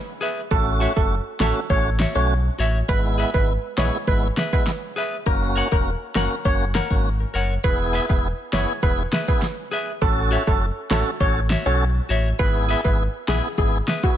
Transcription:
0.21 G#4 B4 E5
0.51 A1 A3 C#4 F#4 A4, kick
0.80 F#4 C#5 E5
0.96 F#1 A3 C#4 F#4 A4, kick
1.40 A1 A3 C#4 F#4 A4 C#5 E5, snare
1.56 muted clean electric guitar stroke
1.70 A1 A3 C#4 F#4 C#5, kick
1.99 F#4 C#5 E5, snare
2.15 B1 A3 C#4 F#4 C#5, muted clean electric guitar stroke
2.59 A1 F#4 C#5 E5
2.88 G#1 G#3 B3 E4 B4, kick
3.18 G#4 B4 E5
3.34 G#1 G#3 B3 E4 B4, kick
3.77 A#1 G#3 B3 E4 G#4 B4 C#5 E5, snare
3.93 muted clean electric guitar stroke
4.07 G#1 G#3 B3 E4 B4, kick
4.37 G#4 B4 E5, snare
4.53 G#3 B3 E4 B4, kick
4.67 snare
4.96 G#4 B4 E5
5.26 F#1 A#3 C#4 F#4 A#4, kick
5.56 A#4 C#5 F#5
5.72 E1 A#3 C#4 F#4 A#4, kick
6.15 F#1 A#3 C#4 F#4 A#4 C#5 F#5, snare
6.31 muted clean electric guitar stroke
6.45 F#1 A#3 C#4 F#4 C#5, kick
6.74 A#4 C#5 F#5, snare
6.90 G#1 A#3 C#4 F#4, kick
7.34 F#1 A#4 C#5 F#5
7.64 E1 B3 E4 G#4 B4, kick
7.93 G#4 B4 E5
8.09 E1 B3 E4 G#4 B4, kick
8.53 F#1 B3 E4 G#4 B4 C#5 E5, snare
8.69 muted clean electric guitar stroke
8.83 E1 B3 E4 G#4 B4, kick
9.12 G#4 B4 E5, snare
9.28 B3 E4 G#4 B4, muted clean electric guitar stroke, kick
9.42 snare
9.71 G#4 B4 E5
10.01 A1 C#4 F#4 A4, kick
10.31 F#4 C#5 E5
10.47 F#1 C#4 F#4 A4, kick
10.90 A1 C#4 F#4 A4 C#5 E5, snare
11.06 muted clean electric guitar stroke
11.20 A1 C#4 F#4 A4 C#5, kick
11.50 F#4 C#5 E5, snare
11.66 B1 C#4 F#4 A4 C#5, muted clean electric guitar stroke
12.09 A1 F#4 C#5 E5
12.39 G#1 B3 E4 G#4 B4, kick
12.69 G#4 B4 E5
12.84 G#1 B3 E4 G#4 B4, kick
13.28 A#1 B3 E4 G#4 B4 E5, snare
13.44 muted clean electric guitar stroke
13.58 G#1 B3 E4 G#4, kick
13.87 G#4 B4 E5, snare
14.03 B3 E4 F#4 G#4, muted clean electric guitar stroke, kick

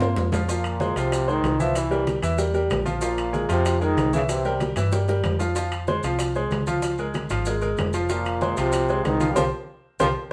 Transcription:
Already playing: G2 F4
0.00 A#3 A#4 C5, low bongo, low conga, high timbale, maracas
0.16 F2, low bongo, low timbale, maracas
0.32 F3 F4 F5, low bongo, low conga, low timbale, maracas
0.48 A#2 F3 F4 F5, high bongo, maracas
0.64 high conga, high timbale, maracas
0.80 G#3 G#4 C5, high bongo, high conga, low timbale, maracas
0.96 C2 C3 F3 F4 F5, high bongo, high timbale, maracas
1.12 high bongo, high conga, high timbale, maracas
1.27 D#3 G#3 G#4 C5, high bongo, high conga, maracas
1.44 C2, high bongo, low bongo, high conga, high timbale, low timbale, maracas
1.60 E3 F3 E4 E5, high bongo, high conga, maracas
1.75 E3, high bongo, high conga, high timbale, maracas
1.91 G3 G4 A#4, high conga, maracas
2.07 high bongo, high conga, high timbale, low timbale, maracas
2.22 E2 E3 E4 E5, high bongo, high timbale, maracas
2.38 G3 G4 A#4, high bongo, high conga, maracas
2.54 G3 G4 A#4, high bongo, high conga, maracas
2.70 A#1, high bongo, low bongo, high conga, high timbale, low timbale, maracas
2.86 F3 F4 F5, high bongo, high conga, maracas
3.01 A#2 F3 F4 F5, high bongo, maracas
3.18 high conga, high timbale, maracas
3.33 G#3 G#4 A#4, high bongo, high conga, low timbale, maracas
3.49 F2 C3 F3 F4 F5, high bongo, high timbale, maracas
3.65 high bongo, high conga, high timbale, maracas
3.81 D#3 G#3 G#4 A#4, high bongo, high conga, maracas
3.97 C2, high bongo, low bongo, high conga, high timbale, low timbale, maracas
4.13 C#3 E3 E4 E5, high bongo, high conga, maracas
4.29 C3, high bongo, high conga, high timbale, maracas
4.45 G3 G4 A#4, high conga, maracas
4.60 high bongo, high conga, high timbale, low timbale, maracas
4.76 G2 E3 E4 E5, high bongo, high timbale, maracas
4.92 G3 G4 A#4, high bongo, high conga, maracas
5.08 G3 G4 A#4, low bongo, high conga, maracas
5.24 F2, high conga, high timbale, low timbale, maracas
5.39 F3 F4 F5, low bongo, maracas
5.56 F3 F4 F5, high bongo, high conga, maracas
5.72 high conga, high timbale, maracas
5.87 G#3 G#4 C5, high bongo, high conga, low timbale, maracas
6.03 C2 F3 F4 F5, high bongo, high timbale, maracas
6.19 high bongo, high conga, high timbale, maracas
6.35 G#3 G#4 C5, high bongo, high conga, maracas
6.51 C#2, high bongo, low bongo, high conga, high timbale, low timbale, maracas
6.67 F3 F4 F5, high bongo, high conga, maracas
6.82 high bongo, high timbale, maracas
6.98 G#3 G#4 A#4, high conga, maracas
7.14 high bongo, high conga, high timbale, low timbale, maracas
7.29 G#1 F3 F4 F5, high bongo, high timbale, maracas
7.45 G#3 G#4 A#4, high bongo, high conga, maracas
7.61 G#3 G#4 A#4, high bongo, high conga, maracas
7.77 F1, high bongo, low bongo, high conga, high timbale, low timbale, maracas
7.93 F3 F4 F5, high bongo, maracas
8.09 A#2 F3 F4 F5, high bongo, high conga, maracas
8.25 high conga, high timbale, maracas
8.41 G#3 G#4 C5, high bongo, high conga, low timbale, maracas
8.57 C2 C3 F3 F4 F5, high bongo, high timbale, maracas
8.72 high bongo, high conga, high timbale, maracas
8.88 G#3 G#4 C5, high bongo, high conga, maracas
9.05 C2 D#3, high bongo, low bongo, high conga, high timbale, low timbale, maracas
9.20 F3 F4 F5, high bongo, high conga, maracas
9.30 G3
9.36 C2 F3 G4 A#4 C5, low bongo, high conga, high timbale, maracas
9.99 C2 F3 G4 A#4 C5, low bongo, high conga, high timbale, maracas

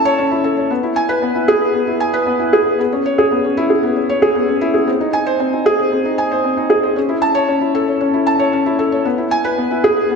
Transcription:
Already playing: C#4 E4 A4 C#5 A5
0.05 C#5
0.18 C#4
0.31 E4
0.44 A4
0.57 C#5
0.70 B3
0.83 E4
0.96 G#5
1.09 B4
1.22 B3
1.35 E4
1.48 G#4
1.61 B4
1.74 B3
1.87 E4
2.00 G#5
2.14 B4
2.26 B3
2.39 E4
2.53 G#4
2.66 B4
2.79 B3
2.92 C#4
3.06 C#5
3.18 G#4
3.31 B3
3.44 C#4
3.57 E4
3.70 G#4
3.83 B3
3.96 C#4
4.09 C#5
4.22 G#4
4.35 B3
4.48 C#4
4.61 E4
4.74 G#4
4.87 C4
5.01 D#4
5.13 G#5
5.27 C5
5.40 C4
5.53 D#4
5.66 G#4
5.79 C5
5.92 C4
6.05 D#4
6.18 G#5
6.31 C5
6.44 C4
6.57 D#4
6.70 G#4
6.83 C5
6.96 C#4
7.09 E4
7.22 A5
7.35 C#5
7.48 C#4
7.61 E4
7.75 A4
7.88 C#5
8.01 C#4
8.14 E4
8.27 A5
8.39 C#5
8.53 C#4
8.66 E4
8.79 A4
8.92 C#5
9.05 B3
9.18 E4
9.31 G#5
9.44 B4
9.58 B3
9.71 E4
9.84 G#4
9.97 B4
10.10 B3

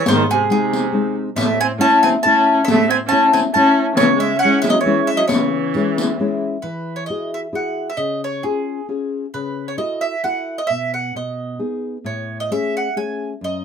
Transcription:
0.06 G#2 D#3 C5, riq
0.31 C3 G#4
0.50 G#3 C4 D#4 G#4, riq
0.55 C3
0.73 riq
0.92 G#3 C4 D#4
1.36 A2 E5, riq
1.40 A3
1.61 C4 G#5
1.79 A3 C#4 E4 A5
2.03 C4 G#5, riq
2.23 A3 C#4 E4 A5
2.65 A2 E5, riq
2.70 A3
2.89 C4 G#5
3.07 C#4 A5
3.11 A3 C#4 E4
3.32 C4 G#5, riq
3.54 A3 C#4 E4 A5
3.96 E3 C#5, riq
4.00 C#3
4.15 G#3
4.20 E5
4.38 C#4 F#5
4.44 G#3 C#4 E4
4.62 G#3 E5, riq
4.70 F#3 D#5
4.81 E3 C#5
4.86 G#3 C#4 E4
5.05 G#3 E5
5.16 F#3 D#5
5.28 C#3 E3 C#5, riq
5.74 G#3 C#4 E4, riq
5.98 riq
6.20 G#3 C#4 E4
6.62 E3 B4
6.96 C#5
7.06 E4 F#4 G#4 D#5
7.34 E5
7.53 E4 F#4 G#4 F#5
7.90 E5
7.97 C#3 D#5
8.24 C#5
8.43 C#4 F4 G#4
8.89 C#4 F4 G#4
9.34 C#3 B4
9.68 C#5
9.78 E4 F#4 A4 D#5
10.01 E5
10.23 E4 F#4 A4 F#5
10.58 D#5
10.67 B2 E5
10.94 F#5
11.15 B2 D#5
11.59 B3 D#4 G#4
12.04 A2 C#5
12.40 D#5
12.51 A3 C#4 G#4 E5
12.77 F#5
12.96 A3 C#4 G#4 G#5
13.41 F#2 D#5

